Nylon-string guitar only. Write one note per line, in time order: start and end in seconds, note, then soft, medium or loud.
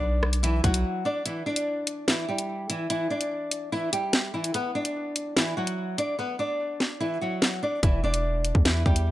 0.00 0.40 D4 medium
0.00 0.40 D5 medium
0.43 0.60 E3 medium
0.43 0.59 E4 medium
0.64 1.03 F#3 medium
0.64 1.03 F#4 medium
1.05 1.21 D4 medium
1.05 1.22 D5 medium
1.26 1.42 E3 medium
1.26 1.42 E4 medium
1.46 2.04 D4 medium
1.46 2.04 D5 medium
2.08 2.24 E3 medium
2.08 2.24 E4 medium
2.28 2.67 G3 medium
2.28 2.67 G4 medium
2.70 2.86 E3 medium
2.70 2.86 E4 medium
2.90 3.07 E3 medium
2.90 3.06 E4 medium
3.10 3.68 D4 medium
3.10 3.69 D5 medium
3.72 3.89 E3 medium
3.72 3.88 E4 medium
3.93 4.32 G3 medium
3.93 4.31 G4 medium
4.34 4.50 E3 medium
4.34 4.50 E4 medium
4.55 4.71 B3 medium
4.55 4.71 B4 medium
4.75 5.33 D4 medium
4.75 5.33 D5 medium
5.36 5.53 E3 medium
5.36 5.53 E4 medium
5.57 5.96 F#3 medium
5.57 5.96 F#4 medium
5.98 6.14 D4 medium
5.98 6.15 D5 medium
6.19 6.35 B3 medium
6.19 6.35 B4 medium
6.39 6.97 D4 medium
6.39 6.98 D5 medium
7.00 7.17 E3 medium
7.00 7.17 E4 medium
7.21 7.60 F#3 medium
7.21 7.60 F#4 medium
7.63 7.79 D4 medium
7.63 7.79 D5 medium
7.83 8.00 E3 medium
7.83 7.99 E4 medium
8.04 8.62 D4 medium
8.04 8.62 D5 medium
8.65 8.82 E3 medium
8.65 8.81 E4 medium
8.86 9.11 G3 medium
8.86 9.11 G4 medium